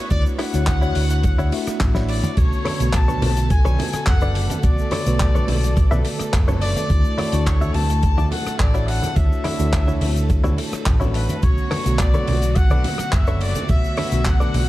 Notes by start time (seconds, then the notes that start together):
Already playing: B3 C#5 C#6
0.10 D2 A3 D4 E4 F#4 C#5 D5, kick, closed hi-hat, ride, shaker
0.26 shaker
0.39 D4 E4 F#4 C#5 F#5, cross-stick, open hi-hat, ride
0.53 D2 A3 D4 E4 F#4 C#5, closed hi-hat, shaker
0.67 kick, clap, closed hi-hat, ride, shaker
0.81 D4 E4 F#4 C#5, shaker
0.95 D2, open hi-hat, ride
1.10 closed hi-hat, shaker
1.23 muted clean electric guitar stroke, kick, closed hi-hat, ride, shaker
1.38 D2 D4 E4 F#4 C#5, shaker
1.52 A3 D4 E4 F#4 E5, open hi-hat, ride
1.67 muted clean electric guitar stroke, muted fingered electric bass stroke, cross-stick, closed hi-hat, shaker
1.80 A1, kick, snare, clap, closed hi-hat, ride, shaker
1.95 D4 E4 F#4 C#5, snare, shaker
2.09 D5, open hi-hat, ride
2.24 closed hi-hat, mid tom, shaker
2.37 B1 D3 A3 B3 C#4 F#4 A4 C#5, kick, closed hi-hat, crash, ride, shaker
2.52 shaker
2.65 D4 A4 B4 C#5, cross-stick, open hi-hat, ride, high conga
2.80 B1 D3 A3 B3 F#4, closed hi-hat, shaker
2.93 A5, kick, clap, closed hi-hat, ride, shaker
3.08 D4 A4 B4 C#5, high conga, shaker
3.22 B1, open hi-hat, ride, low conga
3.37 closed hi-hat, shaker
3.50 G#5, muted clean electric guitar stroke, kick, closed hi-hat, ride, shaker
3.65 B1 D4 A4 B4 C#5, high conga, shaker
3.79 open hi-hat, ride, low conga
3.93 muted clean electric guitar stroke, muted fingered electric bass stroke, cross-stick, closed hi-hat, shaker
4.06 F#1 F#5, kick, clap, closed hi-hat, high conga, shaker
4.21 D4 A4 B4 D5, shaker
4.35 open hi-hat, ride
4.50 closed hi-hat, high conga, low conga, shaker
4.63 B1 D3 A3 B3 F#4 D5, kick, closed hi-hat, ride, shaker
4.78 shaker
4.91 D4 A4 B4 C#5, cross-stick, open hi-hat, ride, high conga
5.06 B1 D3 A3 B3 F#4 B4, closed hi-hat, shaker
5.20 kick, clap, closed hi-hat, ride, shaker
5.35 D4 A4 B4 C#5, high conga, shaker
5.48 B1, open hi-hat, ride, low conga
5.64 closed hi-hat, shaker
5.76 muted clean electric guitar stroke, kick, closed hi-hat, ride, shaker
5.91 B1 D4 A4 B4 E5, high conga, low conga, shaker
6.05 open hi-hat, ride
6.19 muted clean electric guitar stroke, muted fingered electric bass stroke, cross-stick, closed hi-hat, shaker
6.33 F#1, kick, clap, closed hi-hat, ride, high conga, shaker
6.48 D4 A4 B4 C#5, low conga, shaker
6.61 D5, open hi-hat, ride
6.76 closed hi-hat, high conga, shaker
6.90 D2 A3 D4 E4 F#4 D5, kick, closed hi-hat, ride, shaker
7.04 shaker
7.18 D4 E4 F#4 C#5, cross-stick, open hi-hat, ride, high conga
7.32 D2 A3 D4 E4 F#4 C#6, closed hi-hat, shaker
7.46 C#5, kick, clap, closed hi-hat, ride, shaker
7.61 D4 E4 F#4 E5, high conga, shaker
7.74 D2 A5, open hi-hat, ride, low conga
7.90 closed hi-hat, shaker
8.03 muted clean electric guitar stroke, kick, closed hi-hat, ride, shaker
8.17 D2 D4 E4 F#4 D5, high conga, shaker
8.31 F#5, open hi-hat, ride, low conga
8.46 muted clean electric guitar stroke, muted fingered electric bass stroke, cross-stick, closed hi-hat, shaker
8.59 A1 D5, kick, clap, closed hi-hat, ride, high conga, shaker
8.74 D4 E4 F#4 C#5, shaker
8.88 F#5, open hi-hat, ride
9.02 closed hi-hat, high conga, low conga, shaker
9.16 D2 A3 D4 E4 F#4 C#5 E5, kick, closed hi-hat, ride, shaker
9.32 shaker
9.44 D4 E4 F#4 C#5, cross-stick, open hi-hat, ride, high conga
9.59 D2 A3 D4 E4 F#4 C#5, closed hi-hat, shaker
9.73 kick, clap, closed hi-hat, ride, shaker
9.87 D4 E4 F#4 C#5, high conga, shaker
10.01 D2, open hi-hat, ride, low conga
10.16 closed hi-hat, shaker
10.29 muted clean electric guitar stroke, kick, closed hi-hat, ride, shaker
10.44 D2 D4 E4 F#4 C#5, high conga, low conga, shaker
10.58 open hi-hat, ride
10.72 muted clean electric guitar stroke, muted fingered electric bass stroke, cross-stick, closed hi-hat, shaker
10.86 A1, kick, clap, closed hi-hat, ride, high conga, shaker
11.00 D4 E4 F#4 C#5, low conga, shaker
11.14 B4, open hi-hat, ride
11.29 closed hi-hat, high conga, shaker
11.43 B1 D3 F#3 A3 B3 C#4 F#4 C#5, kick, closed hi-hat, ride, shaker
11.58 shaker
11.71 D4 A4 B4 C#5, cross-stick, open hi-hat, ride, high conga
11.85 B1 D3 A3 B3 F#4, closed hi-hat, shaker
11.99 D5, kick, clap, closed hi-hat, ride, shaker
12.13 D4 A4 B4 C#5, high conga, shaker
12.27 B1, open hi-hat, ride, low conga
12.42 closed hi-hat, shaker
12.55 F#5, muted clean electric guitar stroke, kick, closed hi-hat, ride, shaker
12.70 B1 D4 A4 B4 D5, high conga, shaker
12.84 open hi-hat, ride, low conga
12.98 muted fingered electric bass stroke, muted clean electric guitar stroke, cross-stick, closed hi-hat, shaker
13.12 F#1 E5, kick, clap, closed hi-hat, high conga, shaker
13.27 D4 A4 B4 C#5, shaker
13.41 D5, open hi-hat, ride
13.55 closed hi-hat, high conga, low conga, shaker
13.69 B1 D3 A3 B3 F#4 C#5 E5, kick, closed hi-hat, ride, shaker
13.84 shaker
13.97 D4 A4 B4 C#5, cross-stick, open hi-hat, ride, high conga
14.12 B1 D3 A3 B3 F#4, closed hi-hat, shaker
14.25 F#5, kick, clap, closed hi-hat, ride, shaker
14.40 D4 A4 B4 D5, high conga, shaker
14.54 B1, open hi-hat, ride, low conga